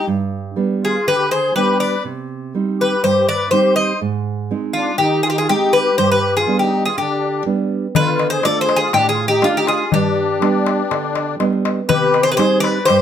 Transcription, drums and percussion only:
7.95 darbuka dum medium
8.19 darbuka tek medium
8.43 darbuka tek medium
8.69 darbuka tek medium
8.93 darbuka tek medium
9.42 darbuka tek medium
9.55 darbuka tek soft
9.67 darbuka tek medium
9.92 darbuka dum medium
10.42 darbuka tek medium
10.66 darbuka tek medium
10.91 darbuka tek medium
11.15 darbuka tek medium
11.40 darbuka tek medium
11.53 darbuka tek soft
11.65 darbuka tek medium
11.90 darbuka dum medium
12.14 darbuka tek medium
12.39 darbuka tek medium
12.64 darbuka tek medium
12.88 darbuka tek medium

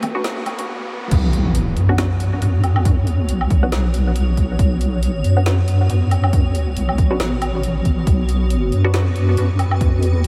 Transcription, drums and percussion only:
0.02 closed hi-hat medium
0.02 high conga medium
0.02 low conga medium
0.02 low woodblock medium
0.24 snare loud
0.24 closed hi-hat medium
0.46 closed hi-hat medium
0.46 high conga medium
0.46 low woodblock medium
0.59 closed hi-hat medium
1.11 kick loud
1.11 closed hi-hat medium
1.11 crash loud
1.33 closed hi-hat medium
1.55 closed hi-hat medium
1.77 closed hi-hat medium
1.98 snare loud
1.98 closed hi-hat medium
2.20 closed hi-hat medium
2.42 closed hi-hat medium
2.64 closed hi-hat medium
2.64 low woodblock medium
2.76 low woodblock medium
2.85 kick loud
2.85 closed hi-hat medium
3.07 closed hi-hat medium
3.29 closed hi-hat medium
3.41 low woodblock medium
3.50 kick loud
3.50 closed hi-hat medium
3.72 snare loud
3.72 closed hi-hat medium
3.94 closed hi-hat medium
4.16 closed hi-hat medium
4.37 kick medium
4.37 closed hi-hat medium
4.59 kick loud
4.59 closed hi-hat medium
4.81 closed hi-hat medium
5.03 closed hi-hat medium
5.24 closed hi-hat medium
5.46 snare loud
5.46 closed hi-hat medium
5.68 closed hi-hat medium
5.90 closed hi-hat medium
6.11 closed hi-hat medium
6.11 low woodblock medium
6.24 low woodblock medium
6.33 kick loud
6.33 closed hi-hat medium
6.55 closed hi-hat medium
6.77 closed hi-hat medium
6.89 low woodblock medium
6.98 kick loud
6.98 closed hi-hat medium
7.20 snare loud
7.20 closed hi-hat medium
7.42 closed hi-hat medium
7.42 low woodblock medium
7.63 closed hi-hat medium
7.85 kick medium
7.85 closed hi-hat medium
8.07 kick loud
8.07 closed hi-hat medium
8.29 closed hi-hat medium
8.50 closed hi-hat medium
8.72 closed hi-hat medium
8.94 snare loud
8.94 closed hi-hat medium
9.16 closed hi-hat medium
9.37 closed hi-hat medium
9.59 closed hi-hat soft
9.59 low woodblock medium
9.71 low woodblock medium
9.81 kick loud
9.81 closed hi-hat medium
10.03 closed hi-hat medium

